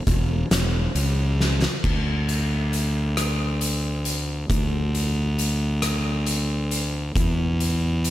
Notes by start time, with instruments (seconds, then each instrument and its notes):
0.07 fingered electric bass E1, kick, closed hi-hat
0.51 fingered electric bass E1, snare, closed hi-hat
0.95 fingered electric bass C#2, closed hi-hat
1.40 snare
1.62 snare
1.84 fingered electric bass D2, kick, crash
2.29 closed hi-hat
2.73 closed hi-hat
3.17 cross-stick, closed hi-hat
3.61 closed hi-hat
4.05 closed hi-hat
4.50 fingered electric bass D2, kick, closed hi-hat
4.95 closed hi-hat
5.39 closed hi-hat
5.82 cross-stick, closed hi-hat
6.26 closed hi-hat
6.71 closed hi-hat
7.16 fingered electric bass E2, kick, closed hi-hat
7.60 closed hi-hat
8.04 closed hi-hat